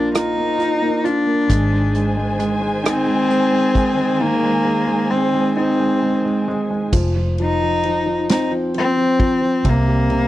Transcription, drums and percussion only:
0.15 cross-stick, closed hi-hat
0.60 cross-stick, closed hi-hat
1.05 closed hi-hat
1.50 kick, closed hi-hat
1.95 closed hi-hat
2.40 closed hi-hat
2.85 cross-stick, closed hi-hat
3.30 closed hi-hat
3.75 kick, closed hi-hat
6.93 kick, crash
7.38 ride
7.83 ride
8.29 snare, ride
8.74 ride
9.20 kick, ride
9.65 kick, ride
10.10 ride

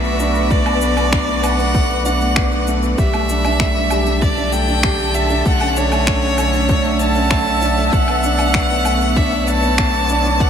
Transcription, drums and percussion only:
0.04 shaker
0.20 shaker
0.35 shaker
0.50 kick, shaker
0.66 low woodblock, shaker
0.81 shaker
0.97 low woodblock, shaker
1.13 finger snap, kick, shaker
1.28 shaker
1.44 low woodblock, shaker
1.59 shaker
1.74 kick, shaker
1.90 shaker
2.05 shaker
2.21 shaker
2.36 finger snap, kick, shaker
2.52 shaker
2.67 shaker
2.83 shaker
2.98 kick, shaker
3.14 low woodblock, shaker
3.29 shaker
3.45 low woodblock, shaker
3.60 finger snap, kick, shaker
3.75 shaker
3.90 low woodblock, shaker
4.06 shaker
4.22 kick, shaker
4.37 shaker
4.53 shaker
4.68 shaker
4.83 finger snap, kick, shaker
4.99 shaker
5.14 shaker
5.30 shaker
5.45 kick, shaker
5.61 low woodblock, shaker
5.76 shaker
5.92 low woodblock, shaker
6.07 finger snap, kick, shaker
6.22 shaker
6.38 low woodblock, shaker
6.53 shaker
6.69 kick, shaker
6.84 shaker
6.99 shaker
7.15 shaker
7.31 finger snap, kick, shaker
7.46 shaker
7.62 shaker
7.77 shaker
7.92 kick, shaker
8.08 low woodblock, shaker
8.23 shaker
8.39 low woodblock, shaker
8.54 finger snap, kick, shaker
8.70 shaker
8.85 low woodblock, shaker
9.01 shaker
9.16 kick, shaker
9.32 shaker
9.47 shaker
9.63 shaker
9.78 finger snap, kick, shaker
9.94 shaker
10.09 shaker
10.25 shaker
10.40 kick, shaker

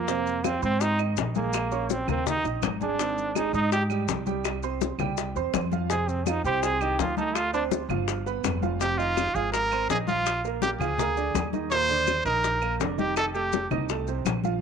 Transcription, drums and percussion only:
0.08 high bongo, high conga, maracas
0.27 high conga, maracas
0.44 high bongo, high conga, claves, maracas
0.62 high conga, maracas
0.81 high bongo, high conga, maracas
0.99 high conga, claves, maracas
1.17 high bongo, low bongo, high conga, maracas
1.35 high conga, maracas
1.53 high bongo, high conga, claves, maracas
1.71 high bongo, high conga, maracas
1.90 high bongo, high conga, maracas
2.08 high bongo, high conga, low conga, claves, maracas
2.27 high bongo, high conga, low conga, maracas
2.45 high bongo, high conga, maracas
2.63 high bongo, low bongo, high conga, claves, maracas
2.81 high conga, maracas
2.99 high bongo, high conga, maracas
3.17 high conga, maracas
3.35 high bongo, high conga, claves, maracas
3.54 high conga, maracas
3.72 high bongo, high conga, maracas
3.90 high conga, claves, maracas
4.08 high bongo, low bongo, high conga, maracas
4.26 high conga, maracas
4.44 high bongo, high conga, claves, maracas
4.63 high bongo, high conga, maracas
4.81 high bongo, high conga, maracas
4.99 high bongo, high conga, low conga, claves, maracas
5.17 high bongo, high conga, maracas
5.36 high bongo, high conga, maracas
5.54 high bongo, low bongo, high conga, claves, maracas
5.72 high conga, maracas
5.90 high bongo, maracas
6.08 high conga, maracas
6.26 high bongo, high conga, claves, maracas
6.44 high conga, maracas
6.63 high bongo, high conga, maracas
6.81 high conga, claves, maracas
6.99 high bongo, low bongo, high conga, maracas
7.17 high conga, maracas
7.35 high bongo, high conga, claves, maracas
7.54 high bongo, high conga, maracas
7.71 high bongo, high conga, maracas
7.90 high bongo, high conga, low conga, claves, maracas
8.08 high bongo, high conga, maracas
8.26 high bongo, high conga, maracas
8.44 high bongo, low bongo, high conga, claves, maracas
8.63 high conga, maracas
8.81 high bongo, high conga, maracas
8.99 high conga, maracas
9.17 high bongo, high conga, claves, maracas
9.35 high conga, maracas
9.54 high bongo, high conga, maracas
9.72 high conga, claves, maracas
9.90 high bongo, low bongo, high conga, maracas
10.07 high conga, maracas
10.26 high bongo, high conga, claves, maracas
10.44 high bongo, high conga, maracas
10.62 high bongo, high conga, maracas
10.81 high bongo, high conga, low conga, claves, maracas
10.98 high bongo, high conga, low conga, maracas
11.16 high bongo, high conga, maracas
11.34 high bongo, low bongo, high conga, claves, maracas
11.53 high conga, maracas
11.71 high bongo, high conga, maracas
11.89 high conga, maracas
12.07 high bongo, high conga, claves, maracas
12.26 high conga, maracas
12.44 high bongo, high conga, maracas
12.62 high conga, claves, maracas
12.80 high bongo, low bongo, high conga, maracas
12.98 high conga, maracas
13.16 high bongo, high conga, claves, maracas
13.35 high bongo, high conga, maracas
13.53 high bongo, high conga, maracas
13.71 high bongo, high conga, low conga, claves, maracas
13.89 high bongo, high conga, maracas
14.07 high bongo, high conga, maracas
14.26 high bongo, low bongo, high conga, claves, maracas
14.44 high conga, maracas

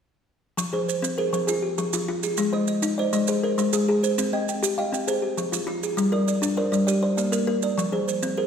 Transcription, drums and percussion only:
0.58 maracas
0.89 maracas
1.04 maracas
1.34 maracas
1.48 maracas
1.78 maracas
1.93 maracas
2.23 maracas
2.37 maracas
2.68 maracas
2.83 maracas
3.13 maracas
3.27 maracas
3.58 maracas
3.73 maracas
4.04 maracas
4.18 maracas
4.48 maracas
4.63 maracas
4.94 maracas
5.08 maracas
5.38 maracas
5.53 maracas
5.83 maracas
5.98 maracas
6.28 maracas
6.43 maracas
6.73 maracas
6.88 maracas
7.18 maracas
7.33 maracas
7.62 maracas
7.79 maracas
8.08 maracas
8.23 maracas

